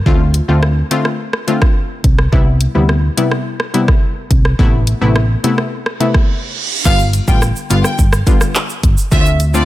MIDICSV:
0, 0, Header, 1, 6, 480
1, 0, Start_track
1, 0, Tempo, 566038
1, 52, Time_signature, 4, 2, 24, 8
1, 8183, End_track
2, 0, Start_track
2, 0, Title_t, "Violin section"
2, 0, Program_c, 0, 48
2, 5812, Note_on_c, 0, 77, 104
2, 5890, Note_off_c, 0, 77, 0
2, 6172, Note_on_c, 0, 79, 78
2, 6251, Note_off_c, 0, 79, 0
2, 6530, Note_on_c, 0, 77, 75
2, 6609, Note_off_c, 0, 77, 0
2, 6651, Note_on_c, 0, 79, 67
2, 6730, Note_off_c, 0, 79, 0
2, 7734, Note_on_c, 0, 76, 98
2, 7812, Note_off_c, 0, 76, 0
2, 8092, Note_on_c, 0, 74, 80
2, 8171, Note_off_c, 0, 74, 0
2, 8183, End_track
3, 0, Start_track
3, 0, Title_t, "Synth pluck"
3, 0, Program_c, 1, 84
3, 49, Note_on_c, 1, 50, 93
3, 50, Note_on_c, 1, 57, 85
3, 51, Note_on_c, 1, 60, 88
3, 54, Note_on_c, 1, 65, 107
3, 177, Note_off_c, 1, 50, 0
3, 178, Note_off_c, 1, 57, 0
3, 178, Note_off_c, 1, 60, 0
3, 180, Note_off_c, 1, 65, 0
3, 409, Note_on_c, 1, 50, 76
3, 410, Note_on_c, 1, 57, 72
3, 412, Note_on_c, 1, 60, 70
3, 413, Note_on_c, 1, 65, 81
3, 537, Note_off_c, 1, 50, 0
3, 537, Note_off_c, 1, 57, 0
3, 538, Note_off_c, 1, 60, 0
3, 539, Note_off_c, 1, 65, 0
3, 769, Note_on_c, 1, 50, 79
3, 770, Note_on_c, 1, 57, 73
3, 772, Note_on_c, 1, 60, 73
3, 774, Note_on_c, 1, 65, 88
3, 897, Note_off_c, 1, 50, 0
3, 898, Note_off_c, 1, 57, 0
3, 898, Note_off_c, 1, 60, 0
3, 900, Note_off_c, 1, 65, 0
3, 1249, Note_on_c, 1, 50, 76
3, 1251, Note_on_c, 1, 57, 69
3, 1252, Note_on_c, 1, 60, 72
3, 1254, Note_on_c, 1, 65, 85
3, 1377, Note_off_c, 1, 50, 0
3, 1378, Note_off_c, 1, 57, 0
3, 1379, Note_off_c, 1, 60, 0
3, 1380, Note_off_c, 1, 65, 0
3, 1968, Note_on_c, 1, 48, 91
3, 1969, Note_on_c, 1, 55, 84
3, 1971, Note_on_c, 1, 59, 85
3, 1973, Note_on_c, 1, 64, 103
3, 2096, Note_off_c, 1, 48, 0
3, 2097, Note_off_c, 1, 55, 0
3, 2098, Note_off_c, 1, 59, 0
3, 2099, Note_off_c, 1, 64, 0
3, 2329, Note_on_c, 1, 48, 75
3, 2330, Note_on_c, 1, 55, 73
3, 2331, Note_on_c, 1, 59, 72
3, 2334, Note_on_c, 1, 64, 83
3, 2457, Note_off_c, 1, 48, 0
3, 2458, Note_off_c, 1, 55, 0
3, 2458, Note_off_c, 1, 59, 0
3, 2459, Note_off_c, 1, 64, 0
3, 2689, Note_on_c, 1, 48, 80
3, 2691, Note_on_c, 1, 55, 75
3, 2692, Note_on_c, 1, 59, 74
3, 2694, Note_on_c, 1, 64, 86
3, 2817, Note_off_c, 1, 48, 0
3, 2818, Note_off_c, 1, 55, 0
3, 2819, Note_off_c, 1, 59, 0
3, 2820, Note_off_c, 1, 64, 0
3, 3169, Note_on_c, 1, 48, 78
3, 3171, Note_on_c, 1, 55, 69
3, 3173, Note_on_c, 1, 59, 70
3, 3174, Note_on_c, 1, 64, 88
3, 3297, Note_off_c, 1, 48, 0
3, 3298, Note_off_c, 1, 55, 0
3, 3299, Note_off_c, 1, 59, 0
3, 3300, Note_off_c, 1, 64, 0
3, 3890, Note_on_c, 1, 48, 93
3, 3893, Note_on_c, 1, 57, 85
3, 3895, Note_on_c, 1, 59, 86
3, 3896, Note_on_c, 1, 64, 104
3, 4018, Note_off_c, 1, 48, 0
3, 4019, Note_off_c, 1, 57, 0
3, 4020, Note_off_c, 1, 59, 0
3, 4021, Note_off_c, 1, 64, 0
3, 4249, Note_on_c, 1, 48, 77
3, 4251, Note_on_c, 1, 57, 70
3, 4252, Note_on_c, 1, 59, 71
3, 4254, Note_on_c, 1, 64, 84
3, 4377, Note_off_c, 1, 48, 0
3, 4378, Note_off_c, 1, 57, 0
3, 4379, Note_off_c, 1, 59, 0
3, 4379, Note_off_c, 1, 64, 0
3, 4610, Note_on_c, 1, 48, 80
3, 4611, Note_on_c, 1, 57, 71
3, 4613, Note_on_c, 1, 59, 72
3, 4615, Note_on_c, 1, 64, 87
3, 4737, Note_off_c, 1, 48, 0
3, 4738, Note_off_c, 1, 57, 0
3, 4739, Note_off_c, 1, 59, 0
3, 4740, Note_off_c, 1, 64, 0
3, 5088, Note_on_c, 1, 48, 76
3, 5090, Note_on_c, 1, 57, 72
3, 5092, Note_on_c, 1, 59, 70
3, 5094, Note_on_c, 1, 64, 86
3, 5217, Note_off_c, 1, 48, 0
3, 5218, Note_off_c, 1, 57, 0
3, 5218, Note_off_c, 1, 59, 0
3, 5219, Note_off_c, 1, 64, 0
3, 5809, Note_on_c, 1, 50, 93
3, 5811, Note_on_c, 1, 55, 88
3, 5812, Note_on_c, 1, 59, 85
3, 5814, Note_on_c, 1, 65, 102
3, 5937, Note_off_c, 1, 50, 0
3, 5938, Note_off_c, 1, 55, 0
3, 5939, Note_off_c, 1, 59, 0
3, 5940, Note_off_c, 1, 65, 0
3, 6168, Note_on_c, 1, 50, 77
3, 6170, Note_on_c, 1, 55, 74
3, 6172, Note_on_c, 1, 59, 69
3, 6173, Note_on_c, 1, 65, 85
3, 6297, Note_off_c, 1, 50, 0
3, 6298, Note_off_c, 1, 55, 0
3, 6298, Note_off_c, 1, 59, 0
3, 6299, Note_off_c, 1, 65, 0
3, 6529, Note_on_c, 1, 50, 79
3, 6531, Note_on_c, 1, 55, 73
3, 6532, Note_on_c, 1, 59, 72
3, 6533, Note_on_c, 1, 65, 90
3, 6657, Note_off_c, 1, 50, 0
3, 6658, Note_off_c, 1, 55, 0
3, 6658, Note_off_c, 1, 59, 0
3, 6659, Note_off_c, 1, 65, 0
3, 7009, Note_on_c, 1, 50, 75
3, 7011, Note_on_c, 1, 55, 72
3, 7013, Note_on_c, 1, 59, 69
3, 7015, Note_on_c, 1, 65, 86
3, 7137, Note_off_c, 1, 50, 0
3, 7138, Note_off_c, 1, 55, 0
3, 7139, Note_off_c, 1, 59, 0
3, 7140, Note_off_c, 1, 65, 0
3, 7729, Note_on_c, 1, 50, 96
3, 7731, Note_on_c, 1, 57, 88
3, 7732, Note_on_c, 1, 60, 84
3, 7734, Note_on_c, 1, 65, 105
3, 7857, Note_off_c, 1, 50, 0
3, 7858, Note_off_c, 1, 57, 0
3, 7859, Note_off_c, 1, 60, 0
3, 7860, Note_off_c, 1, 65, 0
3, 8090, Note_on_c, 1, 50, 78
3, 8091, Note_on_c, 1, 57, 72
3, 8093, Note_on_c, 1, 60, 69
3, 8094, Note_on_c, 1, 65, 87
3, 8183, Note_off_c, 1, 50, 0
3, 8183, Note_off_c, 1, 57, 0
3, 8183, Note_off_c, 1, 60, 0
3, 8183, Note_off_c, 1, 65, 0
3, 8183, End_track
4, 0, Start_track
4, 0, Title_t, "Fingered electric bass"
4, 0, Program_c, 2, 33
4, 51, Note_on_c, 2, 38, 106
4, 330, Note_off_c, 2, 38, 0
4, 410, Note_on_c, 2, 38, 83
4, 690, Note_off_c, 2, 38, 0
4, 1731, Note_on_c, 2, 36, 91
4, 1917, Note_off_c, 2, 36, 0
4, 1972, Note_on_c, 2, 36, 103
4, 2250, Note_off_c, 2, 36, 0
4, 2332, Note_on_c, 2, 38, 88
4, 2611, Note_off_c, 2, 38, 0
4, 3651, Note_on_c, 2, 36, 83
4, 3837, Note_off_c, 2, 36, 0
4, 3892, Note_on_c, 2, 33, 95
4, 4171, Note_off_c, 2, 33, 0
4, 4252, Note_on_c, 2, 33, 81
4, 4531, Note_off_c, 2, 33, 0
4, 5812, Note_on_c, 2, 31, 108
4, 6091, Note_off_c, 2, 31, 0
4, 6171, Note_on_c, 2, 33, 94
4, 6357, Note_off_c, 2, 33, 0
4, 6531, Note_on_c, 2, 31, 94
4, 6624, Note_off_c, 2, 31, 0
4, 6774, Note_on_c, 2, 31, 97
4, 6959, Note_off_c, 2, 31, 0
4, 7491, Note_on_c, 2, 31, 91
4, 7584, Note_off_c, 2, 31, 0
4, 7732, Note_on_c, 2, 38, 101
4, 8183, Note_off_c, 2, 38, 0
4, 8183, End_track
5, 0, Start_track
5, 0, Title_t, "Reverse cymbal"
5, 0, Program_c, 3, 119
5, 4852, Note_on_c, 3, 60, 83
5, 5812, Note_off_c, 3, 60, 0
5, 8183, End_track
6, 0, Start_track
6, 0, Title_t, "Drums"
6, 52, Note_on_c, 9, 36, 103
6, 136, Note_off_c, 9, 36, 0
6, 289, Note_on_c, 9, 42, 71
6, 374, Note_off_c, 9, 42, 0
6, 531, Note_on_c, 9, 37, 97
6, 616, Note_off_c, 9, 37, 0
6, 772, Note_on_c, 9, 42, 81
6, 857, Note_off_c, 9, 42, 0
6, 891, Note_on_c, 9, 37, 92
6, 976, Note_off_c, 9, 37, 0
6, 1130, Note_on_c, 9, 37, 92
6, 1215, Note_off_c, 9, 37, 0
6, 1253, Note_on_c, 9, 42, 59
6, 1337, Note_off_c, 9, 42, 0
6, 1371, Note_on_c, 9, 36, 98
6, 1371, Note_on_c, 9, 37, 96
6, 1456, Note_off_c, 9, 36, 0
6, 1456, Note_off_c, 9, 37, 0
6, 1731, Note_on_c, 9, 36, 96
6, 1731, Note_on_c, 9, 42, 59
6, 1816, Note_off_c, 9, 36, 0
6, 1816, Note_off_c, 9, 42, 0
6, 1853, Note_on_c, 9, 37, 91
6, 1938, Note_off_c, 9, 37, 0
6, 1972, Note_on_c, 9, 36, 101
6, 2057, Note_off_c, 9, 36, 0
6, 2210, Note_on_c, 9, 42, 72
6, 2295, Note_off_c, 9, 42, 0
6, 2451, Note_on_c, 9, 37, 93
6, 2536, Note_off_c, 9, 37, 0
6, 2693, Note_on_c, 9, 42, 86
6, 2778, Note_off_c, 9, 42, 0
6, 2811, Note_on_c, 9, 37, 90
6, 2896, Note_off_c, 9, 37, 0
6, 3051, Note_on_c, 9, 37, 93
6, 3136, Note_off_c, 9, 37, 0
6, 3173, Note_on_c, 9, 42, 62
6, 3258, Note_off_c, 9, 42, 0
6, 3292, Note_on_c, 9, 36, 95
6, 3292, Note_on_c, 9, 37, 95
6, 3377, Note_off_c, 9, 36, 0
6, 3377, Note_off_c, 9, 37, 0
6, 3651, Note_on_c, 9, 36, 89
6, 3652, Note_on_c, 9, 42, 55
6, 3736, Note_off_c, 9, 36, 0
6, 3736, Note_off_c, 9, 42, 0
6, 3774, Note_on_c, 9, 37, 85
6, 3859, Note_off_c, 9, 37, 0
6, 3893, Note_on_c, 9, 36, 98
6, 3977, Note_off_c, 9, 36, 0
6, 4131, Note_on_c, 9, 42, 67
6, 4216, Note_off_c, 9, 42, 0
6, 4372, Note_on_c, 9, 37, 96
6, 4457, Note_off_c, 9, 37, 0
6, 4614, Note_on_c, 9, 42, 82
6, 4699, Note_off_c, 9, 42, 0
6, 4732, Note_on_c, 9, 37, 91
6, 4817, Note_off_c, 9, 37, 0
6, 4971, Note_on_c, 9, 37, 90
6, 5056, Note_off_c, 9, 37, 0
6, 5093, Note_on_c, 9, 42, 59
6, 5177, Note_off_c, 9, 42, 0
6, 5210, Note_on_c, 9, 37, 94
6, 5212, Note_on_c, 9, 36, 98
6, 5295, Note_off_c, 9, 37, 0
6, 5296, Note_off_c, 9, 36, 0
6, 5811, Note_on_c, 9, 49, 92
6, 5811, Note_on_c, 9, 82, 84
6, 5812, Note_off_c, 9, 82, 0
6, 5812, Note_on_c, 9, 36, 104
6, 5812, Note_on_c, 9, 82, 68
6, 5896, Note_off_c, 9, 49, 0
6, 5896, Note_off_c, 9, 82, 0
6, 5897, Note_off_c, 9, 36, 0
6, 5930, Note_on_c, 9, 82, 53
6, 5934, Note_off_c, 9, 82, 0
6, 5934, Note_on_c, 9, 82, 49
6, 6019, Note_off_c, 9, 82, 0
6, 6050, Note_on_c, 9, 42, 68
6, 6050, Note_on_c, 9, 82, 51
6, 6053, Note_off_c, 9, 82, 0
6, 6053, Note_on_c, 9, 82, 55
6, 6135, Note_off_c, 9, 42, 0
6, 6137, Note_off_c, 9, 82, 0
6, 6171, Note_on_c, 9, 36, 92
6, 6171, Note_on_c, 9, 82, 58
6, 6172, Note_off_c, 9, 82, 0
6, 6172, Note_on_c, 9, 82, 75
6, 6255, Note_off_c, 9, 36, 0
6, 6256, Note_off_c, 9, 82, 0
6, 6289, Note_on_c, 9, 82, 78
6, 6292, Note_off_c, 9, 82, 0
6, 6292, Note_on_c, 9, 37, 102
6, 6292, Note_on_c, 9, 82, 72
6, 6377, Note_off_c, 9, 37, 0
6, 6377, Note_off_c, 9, 82, 0
6, 6411, Note_on_c, 9, 82, 57
6, 6414, Note_off_c, 9, 82, 0
6, 6414, Note_on_c, 9, 82, 61
6, 6499, Note_off_c, 9, 82, 0
6, 6531, Note_on_c, 9, 82, 51
6, 6534, Note_off_c, 9, 82, 0
6, 6534, Note_on_c, 9, 42, 88
6, 6534, Note_on_c, 9, 82, 60
6, 6619, Note_off_c, 9, 42, 0
6, 6619, Note_off_c, 9, 82, 0
6, 6652, Note_on_c, 9, 37, 94
6, 6653, Note_on_c, 9, 82, 74
6, 6736, Note_off_c, 9, 37, 0
6, 6738, Note_off_c, 9, 82, 0
6, 6769, Note_on_c, 9, 82, 74
6, 6773, Note_on_c, 9, 36, 96
6, 6774, Note_off_c, 9, 82, 0
6, 6774, Note_on_c, 9, 82, 70
6, 6858, Note_off_c, 9, 36, 0
6, 6859, Note_off_c, 9, 82, 0
6, 6890, Note_on_c, 9, 82, 50
6, 6891, Note_on_c, 9, 37, 98
6, 6893, Note_off_c, 9, 82, 0
6, 6893, Note_on_c, 9, 82, 63
6, 6975, Note_off_c, 9, 37, 0
6, 6978, Note_off_c, 9, 82, 0
6, 7010, Note_on_c, 9, 36, 100
6, 7013, Note_on_c, 9, 42, 62
6, 7013, Note_on_c, 9, 82, 46
6, 7095, Note_off_c, 9, 36, 0
6, 7098, Note_off_c, 9, 42, 0
6, 7098, Note_off_c, 9, 82, 0
6, 7130, Note_on_c, 9, 82, 69
6, 7131, Note_on_c, 9, 37, 97
6, 7132, Note_off_c, 9, 82, 0
6, 7132, Note_on_c, 9, 82, 71
6, 7216, Note_off_c, 9, 37, 0
6, 7217, Note_off_c, 9, 82, 0
6, 7250, Note_on_c, 9, 82, 75
6, 7251, Note_off_c, 9, 82, 0
6, 7251, Note_on_c, 9, 82, 78
6, 7253, Note_on_c, 9, 39, 93
6, 7336, Note_off_c, 9, 82, 0
6, 7337, Note_off_c, 9, 39, 0
6, 7372, Note_on_c, 9, 82, 50
6, 7374, Note_off_c, 9, 82, 0
6, 7374, Note_on_c, 9, 82, 48
6, 7459, Note_off_c, 9, 82, 0
6, 7491, Note_on_c, 9, 36, 95
6, 7491, Note_on_c, 9, 42, 57
6, 7491, Note_on_c, 9, 82, 43
6, 7576, Note_off_c, 9, 36, 0
6, 7576, Note_off_c, 9, 42, 0
6, 7576, Note_off_c, 9, 82, 0
6, 7612, Note_on_c, 9, 82, 70
6, 7613, Note_off_c, 9, 82, 0
6, 7613, Note_on_c, 9, 82, 74
6, 7698, Note_off_c, 9, 82, 0
6, 7732, Note_on_c, 9, 36, 107
6, 7732, Note_on_c, 9, 82, 71
6, 7817, Note_off_c, 9, 36, 0
6, 7817, Note_off_c, 9, 82, 0
6, 7850, Note_on_c, 9, 82, 53
6, 7855, Note_off_c, 9, 82, 0
6, 7855, Note_on_c, 9, 82, 52
6, 7940, Note_off_c, 9, 82, 0
6, 7970, Note_on_c, 9, 42, 69
6, 7970, Note_on_c, 9, 82, 48
6, 7973, Note_off_c, 9, 82, 0
6, 7973, Note_on_c, 9, 82, 56
6, 8055, Note_off_c, 9, 42, 0
6, 8058, Note_off_c, 9, 82, 0
6, 8091, Note_on_c, 9, 82, 77
6, 8176, Note_off_c, 9, 82, 0
6, 8183, End_track
0, 0, End_of_file